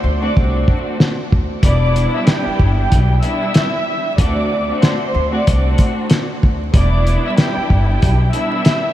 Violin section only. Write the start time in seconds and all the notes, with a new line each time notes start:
Already playing: C5 C6
0.23 D5 D6
1.62 D5 D6
2.14 E5 E6
2.28 G4 G5
2.78 G4 G5
3.23 E5 E6
4.19 D5 D6
4.82 C5 C6
5.34 D5 D6
6.75 D5 D6
7.25 E5 E6
7.38 G4 G5
7.89 G4 G5
8.32 E5 E6